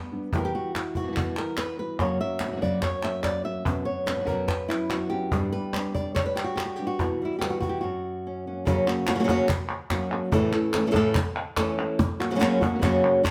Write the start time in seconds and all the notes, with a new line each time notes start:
Already playing: G3 B3 B4
0.11 G3 B3 D4 G4
0.32 E2 B2 E3 G3 B3 F#4 G4, cajon bass
0.38 A#4
0.45 G4
0.54 E3 G3 B3 F#4, cajon slap
0.75 E4, muted nylon-string guitar stroke, cajon slap, clap
0.95 E3 G3 B3 F#4, cajon bass
1.03 B2 E3 G3 B3 F#4
1.07 B2 E3 G3 B3 F#4
1.12 B2 E3 G3 B3 F#4
1.16 E2 B2 E3 G3 B3 F#4, cajon bass, clap
1.37 E3 G3 B3 F#4 A#4, clap
1.57 B4, muted nylon-string guitar stroke, cajon slap, clap
1.78 E3 G3 B3 F#4 B4
1.99 F#2 C#3 F#3 A#3 C#4 F#4 A#4 C#5, cajon bass, cajon slap, clap
2.20 F#3 A#3 C#4 F#4 E5
2.40 F#3 A#3 C#4 F#4, cajon slap, clap
2.47 C#3 F#3 A#3 C#4 F#4
2.52 C#3 F#3 A#3 C#4 F#4
2.56 C#3 F#3 A#3 C#4 F#4
2.61 F#2 C#3 F#3 A#3 C#4 F#4 D5, cajon bass
2.82 C#5, muted nylon-string guitar stroke, cajon bass, cajon slap, clap
3.03 F#3 A#3 C#4 F#4 E5, clap
3.23 F#3 A#3 C#4 F#4 D5, cajon bass, cajon slap, clap
3.43 F#3 A#3 C#4 F#4 E5
3.65 F#2 B2 F#3 B3 C#4 F#4, cajon bass
3.85 F#3 B3 C#4 F#4 C#5, cajon slap
4.06 F#3 B3 C#4 F#4 B4, cajon slap, clap
4.15 B2 F#3 B3 C#4 F#4
4.20 B2 F#3 B3 C#4 F#4
4.24 B2 F#3 B3 C#4 F#4 A#4, cajon bass
4.29 F#2 B2 F#3 B3 C#4 F#4
4.48 B4, muted nylon-string guitar stroke, cajon bass, cajon slap, clap
4.68 B3 C#4 E4 F#4, clap
4.73 F#3
4.90 F#3 B3 C#4 F#4, cajon slap, clap
5.10 F#2 C#4 F#4 G4
5.14 F#3 B3
5.32 G2 D3 G3 B3 D4 G4, cajon bass
5.52 G3 B3 D4 G4 B4, cajon slap
5.73 G3 B3 D4 G4, cajon slap, clap
5.94 B3 D4 G4 D5, cajon bass
5.99 G3
6.15 C#5, muted nylon-string guitar stroke, cajon bass, clap
6.26 B4
6.36 G4, clap
6.44 F#4
6.56 G4, cajon slap, clap
6.65 F#4
6.76 D4 G4
6.80 G3 B3
6.87 F#4
6.99 E2 B2 E3 G3 B3 F#4, cajon bass, cajon slap, clap
7.21 E3 G3 B3 F#4
7.25 E4
7.39 D3 E3 G4, cajon slap, clap
7.43 G3 B3 F#4
7.50 F#4
7.60 E3 G3 B3 F#4, cajon bass
7.64 E3
7.69 G4
7.81 F#2 F#4, muted nylon-string guitar stroke
8.27 C#4
8.46 F#3 A#3 C#4 F#4
8.65 F#2 C#3 F#3 A#3 C#4 F#4, cajon bass
8.87 F#3 A#3 C#4 F#4, clap
9.07 F#3 A#3 C#4 F#4, cajon slap, clap
9.15 C#3 F#3 A#3 C#4 F#4
9.19 C#3 F#3 A#3 C#4 F#4
9.24 C#3 F#3 A#3 C#4 F#4
9.28 F#2 C#3 F#3 A#3 C#4 F#4, cajon bass
9.49 muted nylon-string guitar stroke, cajon bass, clap
9.69 cajon slap, clap
9.90 F#3 A#3 C#4 F#4, cajon bass, cajon slap, clap
10.11 F#3 A#3 C#4 F#4, clap
10.32 A2 C#3 E3 A3 C#4 E4 A4, cajon bass
10.53 E3 A3 C#4 A4, clap
10.73 E3 A3 C#4 E4 A4, cajon slap, clap
10.87 C#3 E3 A3 C#4 A4
10.91 C#3 E3 A3 C#4 E4 A4, cajon bass
10.96 A2 C#3 E3 A3 C#4 A4
11.15 muted nylon-string guitar stroke, cajon bass, clap
11.36 cajon slap, clap
11.57 E3 A3 C#4 E4 A4, cajon bass, cajon slap, clap
11.78 A3 C#4 E4, cajon slap
11.99 muted nylon-string guitar stroke, cajon bass
12.20 F#3 A#3 C#4 F#4, cajon slap, clap
12.30 C#3 F#3 A#3 C#4 F#4
12.35 C#3 F#3 A#3 C#4 F#4
12.39 F#2 C#3 F#3 A#3 C#4 F#4, cajon slap, clap
12.61 F#3 A#3 C#4 F#4, cajon bass
12.74 C#3 F#3 A#3 C#4 F#4
12.79 F#2 C#3 F#3 A#3 C#4 F#4, cajon bass
12.83 F#2 C#3 F#3 A#3 C#4 F#4, clap
13.04 C#4 F#4, cajon slap, clap
13.25 muted nylon-string guitar stroke, cajon bass, cajon slap, clap